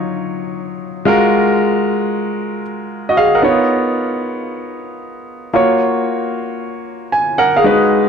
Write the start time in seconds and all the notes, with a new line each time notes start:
Already playing: F#3 D#4 F4 C#5
1.05 G#3 F4 F#4 A#4
3.09 F#4 D#5
3.17 G#4 F5
3.35 A#4 F#5
3.42 B3 D#4 F4 A#4 C#5
5.53 A#3 F4 F#4 C#5
7.12 G#5
7.38 A#4 F#5
7.56 G#4 F5
7.64 G#3 D#4 F#4 B4